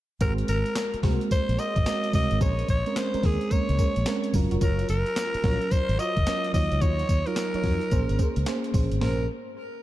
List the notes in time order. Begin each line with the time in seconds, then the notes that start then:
0.21 G#1 G#3 C4 F#4 G#4 A#4 C5, kick, closed hi-hat, tambourine
0.38 closed hi-hat
0.48 G#1 A#4, closed hi-hat, tambourine
0.66 closed hi-hat
0.76 snare, clap, closed hi-hat, tambourine
0.94 muted fingered electric bass stroke, closed hi-hat
1.03 C2 G#3 A#3 F#4 G#4 A#4 C5, kick, snare, open hi-hat
1.10 C4
1.21 closed hi-hat
1.31 C5, muted fingered electric bass stroke, kick, closed hi-hat, tambourine
1.49 A#1, closed hi-hat
1.58 F#4 G#4 A#4 C5 D#5, closed hi-hat, tambourine
1.76 G#1, kick, closed hi-hat
1.86 G#3 C4 F#4 A#4, snare, clap, closed hi-hat, tambourine
2.04 closed hi-hat
2.13 C2 G#3 C4 F#4 A#4 D#5, kick, open hi-hat, tambourine
2.31 G#1, closed hi-hat
2.41 A#1 C#4 G#4 A#4 C5 C#5, kick, closed hi-hat, tambourine
2.59 closed hi-hat
2.68 A#1 C#5, kick, closed hi-hat, tambourine
2.86 G#3 C4 C#4 A#4, closed hi-hat
2.96 C5, snare, clap, closed hi-hat, tambourine
3.14 G#3 C4 C#4 A#4, muted fingered electric bass stroke, closed hi-hat
3.23 D#2 C#4 G#4 A#4 C5, kick, open hi-hat
3.41 closed hi-hat
3.51 G#3 A#3 C#4 A#4 C#5, muted fingered electric bass stroke, kick, closed hi-hat, tambourine
3.69 C#2, closed hi-hat
3.78 C#4 G#4 A#4 C5, kick, closed hi-hat, tambourine
3.96 A#1, closed hi-hat
4.06 G#3 C4 C#4 A#4, snare, clap, closed hi-hat, tambourine
4.24 closed hi-hat
4.34 F#1 F#3 C#4 F4 A#4, kick, open hi-hat, tambourine
4.51 F1 F4 F#4 A#4 C#5, closed hi-hat
4.61 F#1 F4 F#4 A#4 C#5, kick, closed hi-hat, tambourine
4.79 closed hi-hat
4.89 F#1 A#4, closed hi-hat, tambourine
5.06 closed hi-hat
5.16 snare, clap, closed hi-hat, tambourine
5.34 muted fingered electric bass stroke, closed hi-hat
5.43 A#1 F#3 C#4 F4 F#4 A#4 C#5, kick, snare, open hi-hat
5.61 closed hi-hat
5.71 C5, muted fingered electric bass stroke, kick, closed hi-hat, tambourine
5.89 G#1, closed hi-hat
5.98 F4 F#4 A#4 C#5 D#5, closed hi-hat, tambourine
6.17 F#1, kick, closed hi-hat
6.26 F#3 C#4 F4 A#4, snare, clap, closed hi-hat, tambourine
6.44 closed hi-hat
6.54 D#2 F#3 D#4 F4 C#5 D#5, kick, open hi-hat, tambourine
6.72 C#2, closed hi-hat
6.81 D#2 D#4 F4 F#4 C#5, kick, closed hi-hat, tambourine
6.99 closed hi-hat
7.09 D#2, kick, closed hi-hat, tambourine
7.26 F#3 D#4 F4 A#4 C#5, closed hi-hat
7.36 snare, clap, closed hi-hat, tambourine
7.54 F#3 D#4 F4 C#5, muted fingered electric bass stroke, closed hi-hat
7.63 F2 D#4 F4 F#4 C#5, kick, open hi-hat
7.81 closed hi-hat
7.91 A#1 A#3 C#4 G#4 C5, kick, closed hi-hat, tambourine
8.09 G#1, closed hi-hat
8.18 C#4 G#4 A#4 C5, kick, closed hi-hat, tambourine
8.36 C#2, closed hi-hat
8.46 A#3 C#4 G#4 C5, snare, clap, closed hi-hat, tambourine
8.64 closed hi-hat
8.74 A#1 A#3 C#4 G#4 C5, kick, open hi-hat, tambourine
8.91 G#1, closed hi-hat
9.01 A#1 A#3 C#4 G#4 A#4 C5, snare, floor tom, open hi-hat